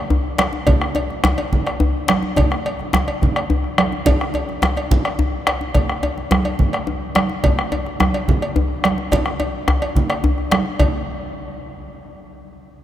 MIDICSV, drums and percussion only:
0, 0, Header, 1, 4, 480
1, 0, Start_track
1, 0, Tempo, 282220
1, 1143, Time_signature, 12, 3, 24, 8
1, 11698, Tempo, 279460
1, 21937, End_track
2, 0, Start_track
2, 0, Title_t, "Bombo"
2, 663, Note_on_c, 9, 37, 107
2, 833, Note_off_c, 9, 37, 0
2, 1149, Note_on_c, 9, 43, 104
2, 1319, Note_off_c, 9, 43, 0
2, 1386, Note_on_c, 9, 37, 78
2, 1556, Note_off_c, 9, 37, 0
2, 1874, Note_on_c, 9, 37, 30
2, 2044, Note_off_c, 9, 37, 0
2, 2103, Note_on_c, 9, 37, 95
2, 2273, Note_off_c, 9, 37, 0
2, 2595, Note_on_c, 9, 37, 29
2, 2595, Note_on_c, 9, 43, 98
2, 2765, Note_off_c, 9, 37, 0
2, 2765, Note_off_c, 9, 43, 0
2, 2843, Note_on_c, 9, 37, 75
2, 3013, Note_off_c, 9, 37, 0
2, 3551, Note_on_c, 9, 37, 106
2, 3721, Note_off_c, 9, 37, 0
2, 4036, Note_on_c, 9, 37, 28
2, 4036, Note_on_c, 9, 43, 90
2, 4206, Note_off_c, 9, 37, 0
2, 4206, Note_off_c, 9, 43, 0
2, 4281, Note_on_c, 9, 37, 79
2, 4451, Note_off_c, 9, 37, 0
2, 4755, Note_on_c, 9, 37, 30
2, 4925, Note_off_c, 9, 37, 0
2, 4997, Note_on_c, 9, 37, 95
2, 5168, Note_off_c, 9, 37, 0
2, 5479, Note_on_c, 9, 37, 33
2, 5479, Note_on_c, 9, 43, 98
2, 5650, Note_off_c, 9, 37, 0
2, 5650, Note_off_c, 9, 43, 0
2, 5717, Note_on_c, 9, 37, 79
2, 5887, Note_off_c, 9, 37, 0
2, 6194, Note_on_c, 9, 37, 35
2, 6364, Note_off_c, 9, 37, 0
2, 6431, Note_on_c, 9, 37, 114
2, 6601, Note_off_c, 9, 37, 0
2, 6685, Note_on_c, 9, 37, 33
2, 6855, Note_off_c, 9, 37, 0
2, 6919, Note_on_c, 9, 43, 97
2, 7089, Note_off_c, 9, 43, 0
2, 7164, Note_on_c, 9, 37, 85
2, 7334, Note_off_c, 9, 37, 0
2, 7647, Note_on_c, 9, 37, 31
2, 7817, Note_off_c, 9, 37, 0
2, 7871, Note_on_c, 9, 37, 95
2, 8041, Note_off_c, 9, 37, 0
2, 8351, Note_on_c, 9, 37, 33
2, 8351, Note_on_c, 9, 43, 108
2, 8521, Note_off_c, 9, 37, 0
2, 8521, Note_off_c, 9, 43, 0
2, 8591, Note_on_c, 9, 37, 78
2, 8761, Note_off_c, 9, 37, 0
2, 9300, Note_on_c, 9, 37, 106
2, 9470, Note_off_c, 9, 37, 0
2, 9778, Note_on_c, 9, 43, 85
2, 9948, Note_off_c, 9, 43, 0
2, 10026, Note_on_c, 9, 37, 76
2, 10196, Note_off_c, 9, 37, 0
2, 10508, Note_on_c, 9, 37, 27
2, 10678, Note_off_c, 9, 37, 0
2, 10750, Note_on_c, 9, 37, 97
2, 10920, Note_off_c, 9, 37, 0
2, 11221, Note_on_c, 9, 37, 30
2, 11221, Note_on_c, 9, 43, 107
2, 11391, Note_off_c, 9, 37, 0
2, 11391, Note_off_c, 9, 43, 0
2, 11469, Note_on_c, 9, 37, 80
2, 11639, Note_off_c, 9, 37, 0
2, 12181, Note_on_c, 9, 37, 110
2, 12353, Note_off_c, 9, 37, 0
2, 12674, Note_on_c, 9, 43, 92
2, 12845, Note_off_c, 9, 43, 0
2, 12915, Note_on_c, 9, 37, 82
2, 13087, Note_off_c, 9, 37, 0
2, 13394, Note_on_c, 9, 37, 27
2, 13565, Note_off_c, 9, 37, 0
2, 13632, Note_on_c, 9, 37, 90
2, 13804, Note_off_c, 9, 37, 0
2, 14107, Note_on_c, 9, 37, 31
2, 14107, Note_on_c, 9, 43, 96
2, 14279, Note_off_c, 9, 37, 0
2, 14279, Note_off_c, 9, 43, 0
2, 15066, Note_on_c, 9, 37, 117
2, 15238, Note_off_c, 9, 37, 0
2, 15550, Note_on_c, 9, 43, 90
2, 15722, Note_off_c, 9, 43, 0
2, 15783, Note_on_c, 9, 37, 80
2, 15955, Note_off_c, 9, 37, 0
2, 16506, Note_on_c, 9, 37, 90
2, 16678, Note_off_c, 9, 37, 0
2, 16982, Note_on_c, 9, 37, 34
2, 16982, Note_on_c, 9, 43, 94
2, 17154, Note_off_c, 9, 37, 0
2, 17154, Note_off_c, 9, 43, 0
2, 17234, Note_on_c, 9, 37, 76
2, 17406, Note_off_c, 9, 37, 0
2, 17472, Note_on_c, 9, 37, 34
2, 17644, Note_off_c, 9, 37, 0
2, 17714, Note_on_c, 9, 37, 35
2, 17886, Note_off_c, 9, 37, 0
2, 17955, Note_on_c, 9, 37, 117
2, 18127, Note_off_c, 9, 37, 0
2, 18423, Note_on_c, 9, 43, 80
2, 18595, Note_off_c, 9, 43, 0
2, 21937, End_track
3, 0, Start_track
3, 0, Title_t, "Djembe"
3, 176, Note_on_c, 9, 63, 85
3, 176, Note_on_c, 9, 64, 78
3, 346, Note_off_c, 9, 63, 0
3, 346, Note_off_c, 9, 64, 0
3, 654, Note_on_c, 9, 62, 86
3, 824, Note_off_c, 9, 62, 0
3, 896, Note_on_c, 9, 63, 53
3, 1066, Note_off_c, 9, 63, 0
3, 1132, Note_on_c, 9, 62, 24
3, 1132, Note_on_c, 9, 64, 89
3, 1302, Note_off_c, 9, 62, 0
3, 1302, Note_off_c, 9, 64, 0
3, 1612, Note_on_c, 9, 63, 79
3, 1782, Note_off_c, 9, 63, 0
3, 2104, Note_on_c, 9, 62, 84
3, 2104, Note_on_c, 9, 64, 90
3, 2274, Note_off_c, 9, 62, 0
3, 2274, Note_off_c, 9, 64, 0
3, 2346, Note_on_c, 9, 63, 69
3, 2517, Note_off_c, 9, 63, 0
3, 2826, Note_on_c, 9, 62, 27
3, 2996, Note_off_c, 9, 62, 0
3, 3063, Note_on_c, 9, 63, 81
3, 3063, Note_on_c, 9, 64, 82
3, 3233, Note_off_c, 9, 63, 0
3, 3233, Note_off_c, 9, 64, 0
3, 3541, Note_on_c, 9, 62, 80
3, 3711, Note_off_c, 9, 62, 0
3, 3783, Note_on_c, 9, 63, 61
3, 3953, Note_off_c, 9, 63, 0
3, 4022, Note_on_c, 9, 62, 28
3, 4022, Note_on_c, 9, 64, 92
3, 4192, Note_off_c, 9, 62, 0
3, 4192, Note_off_c, 9, 64, 0
3, 4263, Note_on_c, 9, 62, 25
3, 4433, Note_off_c, 9, 62, 0
3, 4749, Note_on_c, 9, 62, 28
3, 4920, Note_off_c, 9, 62, 0
3, 4987, Note_on_c, 9, 62, 76
3, 4987, Note_on_c, 9, 64, 79
3, 5157, Note_off_c, 9, 62, 0
3, 5157, Note_off_c, 9, 64, 0
3, 5233, Note_on_c, 9, 63, 60
3, 5403, Note_off_c, 9, 63, 0
3, 5467, Note_on_c, 9, 62, 25
3, 5637, Note_off_c, 9, 62, 0
3, 5950, Note_on_c, 9, 63, 80
3, 5950, Note_on_c, 9, 64, 72
3, 6120, Note_off_c, 9, 63, 0
3, 6120, Note_off_c, 9, 64, 0
3, 6669, Note_on_c, 9, 62, 20
3, 6669, Note_on_c, 9, 63, 50
3, 6839, Note_off_c, 9, 62, 0
3, 6839, Note_off_c, 9, 63, 0
3, 6902, Note_on_c, 9, 62, 22
3, 6902, Note_on_c, 9, 64, 72
3, 7072, Note_off_c, 9, 62, 0
3, 7072, Note_off_c, 9, 64, 0
3, 7379, Note_on_c, 9, 63, 71
3, 7550, Note_off_c, 9, 63, 0
3, 7859, Note_on_c, 9, 62, 68
3, 7859, Note_on_c, 9, 64, 68
3, 8029, Note_off_c, 9, 62, 0
3, 8029, Note_off_c, 9, 64, 0
3, 8106, Note_on_c, 9, 63, 57
3, 8276, Note_off_c, 9, 63, 0
3, 8582, Note_on_c, 9, 62, 23
3, 8752, Note_off_c, 9, 62, 0
3, 8825, Note_on_c, 9, 63, 81
3, 8825, Note_on_c, 9, 64, 74
3, 8995, Note_off_c, 9, 63, 0
3, 8995, Note_off_c, 9, 64, 0
3, 9305, Note_on_c, 9, 62, 76
3, 9475, Note_off_c, 9, 62, 0
3, 9540, Note_on_c, 9, 63, 54
3, 9710, Note_off_c, 9, 63, 0
3, 9779, Note_on_c, 9, 62, 26
3, 9779, Note_on_c, 9, 64, 74
3, 9949, Note_off_c, 9, 62, 0
3, 9949, Note_off_c, 9, 64, 0
3, 10255, Note_on_c, 9, 63, 89
3, 10425, Note_off_c, 9, 63, 0
3, 10731, Note_on_c, 9, 62, 80
3, 10731, Note_on_c, 9, 64, 69
3, 10901, Note_off_c, 9, 62, 0
3, 10901, Note_off_c, 9, 64, 0
3, 10966, Note_on_c, 9, 63, 55
3, 11136, Note_off_c, 9, 63, 0
3, 11447, Note_on_c, 9, 62, 23
3, 11617, Note_off_c, 9, 62, 0
3, 11684, Note_on_c, 9, 63, 75
3, 11856, Note_off_c, 9, 63, 0
3, 12169, Note_on_c, 9, 62, 71
3, 12340, Note_off_c, 9, 62, 0
3, 12412, Note_on_c, 9, 63, 50
3, 12584, Note_off_c, 9, 63, 0
3, 12657, Note_on_c, 9, 62, 22
3, 12657, Note_on_c, 9, 64, 75
3, 12828, Note_off_c, 9, 62, 0
3, 12828, Note_off_c, 9, 64, 0
3, 13143, Note_on_c, 9, 63, 80
3, 13315, Note_off_c, 9, 63, 0
3, 13629, Note_on_c, 9, 62, 79
3, 13629, Note_on_c, 9, 64, 74
3, 13801, Note_off_c, 9, 62, 0
3, 13801, Note_off_c, 9, 64, 0
3, 13869, Note_on_c, 9, 63, 54
3, 14041, Note_off_c, 9, 63, 0
3, 14355, Note_on_c, 9, 62, 22
3, 14527, Note_off_c, 9, 62, 0
3, 14585, Note_on_c, 9, 63, 78
3, 14585, Note_on_c, 9, 64, 78
3, 14756, Note_off_c, 9, 63, 0
3, 14756, Note_off_c, 9, 64, 0
3, 15308, Note_on_c, 9, 63, 55
3, 15479, Note_off_c, 9, 63, 0
3, 15543, Note_on_c, 9, 62, 26
3, 15543, Note_on_c, 9, 64, 72
3, 15714, Note_off_c, 9, 62, 0
3, 15714, Note_off_c, 9, 64, 0
3, 15794, Note_on_c, 9, 62, 23
3, 15965, Note_off_c, 9, 62, 0
3, 16024, Note_on_c, 9, 63, 88
3, 16196, Note_off_c, 9, 63, 0
3, 16509, Note_on_c, 9, 62, 81
3, 16509, Note_on_c, 9, 64, 86
3, 16680, Note_off_c, 9, 62, 0
3, 16680, Note_off_c, 9, 64, 0
3, 16751, Note_on_c, 9, 62, 27
3, 16751, Note_on_c, 9, 63, 63
3, 16923, Note_off_c, 9, 62, 0
3, 16923, Note_off_c, 9, 63, 0
3, 17470, Note_on_c, 9, 63, 83
3, 17470, Note_on_c, 9, 64, 84
3, 17641, Note_off_c, 9, 63, 0
3, 17641, Note_off_c, 9, 64, 0
3, 17945, Note_on_c, 9, 62, 78
3, 18117, Note_off_c, 9, 62, 0
3, 18189, Note_on_c, 9, 62, 26
3, 18361, Note_off_c, 9, 62, 0
3, 18428, Note_on_c, 9, 64, 87
3, 18600, Note_off_c, 9, 64, 0
3, 21937, End_track
4, 0, Start_track
4, 0, Title_t, "Drums"
4, 654, Note_on_c, 9, 56, 56
4, 663, Note_on_c, 9, 63, 83
4, 824, Note_off_c, 9, 56, 0
4, 833, Note_off_c, 9, 63, 0
4, 1133, Note_on_c, 9, 56, 64
4, 1144, Note_on_c, 9, 64, 84
4, 1303, Note_off_c, 9, 56, 0
4, 1314, Note_off_c, 9, 64, 0
4, 1626, Note_on_c, 9, 56, 59
4, 1796, Note_off_c, 9, 56, 0
4, 1877, Note_on_c, 9, 63, 27
4, 2047, Note_off_c, 9, 63, 0
4, 2120, Note_on_c, 9, 63, 77
4, 2290, Note_off_c, 9, 63, 0
4, 2345, Note_on_c, 9, 56, 48
4, 2358, Note_on_c, 9, 63, 22
4, 2515, Note_off_c, 9, 56, 0
4, 2528, Note_off_c, 9, 63, 0
4, 2596, Note_on_c, 9, 64, 77
4, 2766, Note_off_c, 9, 64, 0
4, 2832, Note_on_c, 9, 56, 49
4, 3002, Note_off_c, 9, 56, 0
4, 3548, Note_on_c, 9, 56, 54
4, 3565, Note_on_c, 9, 63, 80
4, 3718, Note_off_c, 9, 56, 0
4, 3735, Note_off_c, 9, 63, 0
4, 4032, Note_on_c, 9, 56, 67
4, 4046, Note_on_c, 9, 63, 29
4, 4046, Note_on_c, 9, 64, 84
4, 4202, Note_off_c, 9, 56, 0
4, 4216, Note_off_c, 9, 63, 0
4, 4216, Note_off_c, 9, 64, 0
4, 4523, Note_on_c, 9, 56, 53
4, 4693, Note_off_c, 9, 56, 0
4, 4771, Note_on_c, 9, 63, 24
4, 4941, Note_off_c, 9, 63, 0
4, 5007, Note_on_c, 9, 63, 80
4, 5177, Note_off_c, 9, 63, 0
4, 5236, Note_on_c, 9, 56, 49
4, 5406, Note_off_c, 9, 56, 0
4, 5490, Note_on_c, 9, 63, 26
4, 5490, Note_on_c, 9, 64, 78
4, 5660, Note_off_c, 9, 63, 0
4, 5660, Note_off_c, 9, 64, 0
4, 5721, Note_on_c, 9, 56, 46
4, 5892, Note_off_c, 9, 56, 0
4, 6431, Note_on_c, 9, 56, 60
4, 6433, Note_on_c, 9, 63, 81
4, 6601, Note_off_c, 9, 56, 0
4, 6603, Note_off_c, 9, 63, 0
4, 6903, Note_on_c, 9, 64, 92
4, 6916, Note_on_c, 9, 56, 73
4, 7073, Note_off_c, 9, 64, 0
4, 7086, Note_off_c, 9, 56, 0
4, 7396, Note_on_c, 9, 56, 50
4, 7566, Note_off_c, 9, 56, 0
4, 7633, Note_on_c, 9, 63, 25
4, 7803, Note_off_c, 9, 63, 0
4, 7877, Note_on_c, 9, 63, 80
4, 8048, Note_off_c, 9, 63, 0
4, 8116, Note_on_c, 9, 56, 47
4, 8119, Note_on_c, 9, 63, 24
4, 8286, Note_off_c, 9, 56, 0
4, 8289, Note_off_c, 9, 63, 0
4, 8358, Note_on_c, 9, 64, 85
4, 8528, Note_off_c, 9, 64, 0
4, 8589, Note_on_c, 9, 56, 44
4, 8759, Note_off_c, 9, 56, 0
4, 9307, Note_on_c, 9, 56, 54
4, 9477, Note_off_c, 9, 56, 0
4, 9771, Note_on_c, 9, 56, 56
4, 9779, Note_on_c, 9, 64, 78
4, 9941, Note_off_c, 9, 56, 0
4, 9949, Note_off_c, 9, 64, 0
4, 10257, Note_on_c, 9, 56, 50
4, 10427, Note_off_c, 9, 56, 0
4, 10503, Note_on_c, 9, 63, 26
4, 10673, Note_off_c, 9, 63, 0
4, 10740, Note_on_c, 9, 63, 83
4, 10910, Note_off_c, 9, 63, 0
4, 10971, Note_on_c, 9, 56, 49
4, 10983, Note_on_c, 9, 63, 22
4, 11141, Note_off_c, 9, 56, 0
4, 11153, Note_off_c, 9, 63, 0
4, 11209, Note_on_c, 9, 64, 77
4, 11379, Note_off_c, 9, 64, 0
4, 11449, Note_on_c, 9, 56, 46
4, 11619, Note_off_c, 9, 56, 0
4, 12176, Note_on_c, 9, 56, 63
4, 12183, Note_on_c, 9, 63, 75
4, 12347, Note_off_c, 9, 56, 0
4, 12354, Note_off_c, 9, 63, 0
4, 12658, Note_on_c, 9, 56, 68
4, 12659, Note_on_c, 9, 64, 92
4, 12830, Note_off_c, 9, 56, 0
4, 12831, Note_off_c, 9, 64, 0
4, 13144, Note_on_c, 9, 56, 51
4, 13316, Note_off_c, 9, 56, 0
4, 13392, Note_on_c, 9, 63, 25
4, 13564, Note_off_c, 9, 63, 0
4, 13624, Note_on_c, 9, 63, 77
4, 13796, Note_off_c, 9, 63, 0
4, 13872, Note_on_c, 9, 56, 51
4, 13878, Note_on_c, 9, 63, 21
4, 14044, Note_off_c, 9, 56, 0
4, 14050, Note_off_c, 9, 63, 0
4, 14118, Note_on_c, 9, 64, 85
4, 14290, Note_off_c, 9, 64, 0
4, 14352, Note_on_c, 9, 56, 48
4, 14524, Note_off_c, 9, 56, 0
4, 15075, Note_on_c, 9, 56, 58
4, 15086, Note_on_c, 9, 63, 83
4, 15247, Note_off_c, 9, 56, 0
4, 15257, Note_off_c, 9, 63, 0
4, 15550, Note_on_c, 9, 56, 68
4, 15566, Note_on_c, 9, 64, 92
4, 15722, Note_off_c, 9, 56, 0
4, 15738, Note_off_c, 9, 64, 0
4, 16024, Note_on_c, 9, 56, 50
4, 16196, Note_off_c, 9, 56, 0
4, 16751, Note_on_c, 9, 56, 56
4, 16923, Note_off_c, 9, 56, 0
4, 16999, Note_on_c, 9, 64, 82
4, 17170, Note_off_c, 9, 64, 0
4, 17225, Note_on_c, 9, 56, 53
4, 17397, Note_off_c, 9, 56, 0
4, 17482, Note_on_c, 9, 63, 26
4, 17654, Note_off_c, 9, 63, 0
4, 17946, Note_on_c, 9, 56, 56
4, 17954, Note_on_c, 9, 63, 85
4, 18117, Note_off_c, 9, 56, 0
4, 18126, Note_off_c, 9, 63, 0
4, 18426, Note_on_c, 9, 56, 85
4, 18435, Note_on_c, 9, 64, 92
4, 18598, Note_off_c, 9, 56, 0
4, 18606, Note_off_c, 9, 64, 0
4, 21937, End_track
0, 0, End_of_file